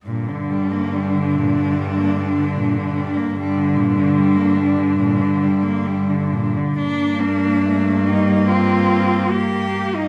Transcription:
<<
  \new Staff \with { instrumentName = "Cello" } { \time 4/4 \key g \minor \tempo 4 = 71 d'1 | d'2.~ d'8. r16 | d'4. ees'8 f'4 g'8. ees'16 | }
  \new Staff \with { instrumentName = "Cello" } { \time 4/4 \key g \minor d1 | d2.~ d8. r16 | bes4 a8 g8 c'4 bes4 | }
  \new Staff \with { instrumentName = "Cello" } { \clef bass \time 4/4 \key g \minor bes,16 d16 g16 bes16 g16 d16 bes,16 d16 g16 bes16 g16 d16 bes,16 d16 g16 bes16 | g16 d16 bes,16 d16 g16 bes16 g16 d16 bes,16 d16 g16 bes16 g16 d16 bes,16 d16 | d'8 bes2.~ bes8 | }
  \new Staff \with { instrumentName = "Cello" } { \clef bass \time 4/4 \key g \minor g,1 | g,2.~ g,8. r16 | g,1 | }
>>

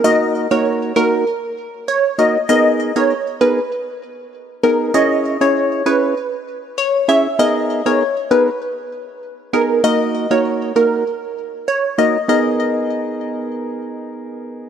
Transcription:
<<
  \new Staff \with { instrumentName = "Synth pluck" } { \time 4/4 \key gis \minor \tempo 4 = 98 dis''16 r8 cis''16 r8 ais'16 r4 r16 cis''16 r16 dis''16 r16 | dis''16 r8 cis''16 r8 b'16 r4. r16 ais'16 r16 | dis''16 r8 cis''16 r8 b'16 r4 r16 cis''16 r16 e''16 r16 | dis''16 r8 cis''16 r8 b'16 r4. r16 ais'16 r16 |
dis''16 r8 cis''16 r8 ais'16 r4 r16 cis''16 r16 dis''16 r16 | dis''2. r4 | }
  \new Staff \with { instrumentName = "Synth stab" } { \time 4/4 \key gis \minor <ais dis' fis' ais'>8. <ais dis' fis' ais'>8. <ais dis' fis' ais'>8 r4. <ais dis' fis' ais'>16 r16 | <b dis' gis' ais'>8. <b dis' gis' ais'>16 r8 <b dis' gis' ais'>16 r4. r16 <b dis' gis' ais'>8 | <cis' e' gis' cis''>8. <cis' e' gis' cis''>8. <cis' e' gis' cis''>8 r4. <cis' e' gis' cis''>16 r16 | <b dis' gis' ais'>8. <b dis' gis' ais'>16 r8 <b dis' gis' ais'>16 r4. r16 <b dis' gis' ais'>8 |
<ais dis' fis' ais'>8. <ais dis' fis' ais'>8. <ais dis' fis' ais'>8 r4. <ais dis' fis' ais'>16 r16 | <b dis' gis' ais'>1 | }
>>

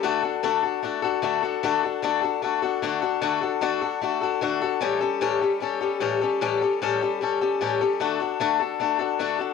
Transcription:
\new Staff \with { instrumentName = "Steel-string acoustic guitar" } { \time 4/4 \key d \major \tempo 4 = 151 <d a d' fis' a'>8 <d' fis' a'>8 <d a d' fis' a'>8 <d' fis' a'>8 <a d' fis' a'>8 <d' fis' a'>8 <d a d' fis' a'>8 <d' fis' a'>8 | <d a d' fis' a'>8 <d' fis' a'>8 <d a d' fis' a'>8 <d' fis' a'>8 <a d' fis' a'>8 <d' fis' a'>8 <d a d' fis' a'>8 <d' fis' a'>8 | <d a d' fis' a'>8 <d' fis' a'>8 <d a d' fis' a'>8 <d' fis' a'>8 <a d' fis' a'>8 <d' fis' a'>8 <d a d' fis' a'>8 <d' fis' a'>8 | <a, e g cis' g' a'>8 <g cis' g' a'>8 <a, e g cis' g' a'>8 <g cis' g' a'>8 <g cis' g' a'>8 <g cis' g' a'>8 <a, e g cis' g' a'>8 <g cis' g' a'>8 |
<a, e g cis' g' a'>8 <g cis' g' a'>8 <a, e g cis' g' a'>8 <g cis' g' a'>8 <g cis' g' a'>8 <g cis' g' a'>8 <a, e g cis' g' a'>8 <g cis' g' a'>8 | <d a d' fis' a'>8 <d' fis' a'>8 <d a d' fis' a'>8 <d' fis' a'>8 <a d' fis' a'>8 <d' fis' a'>8 <d a d' fis' a'>8 <d' fis' a'>8 | }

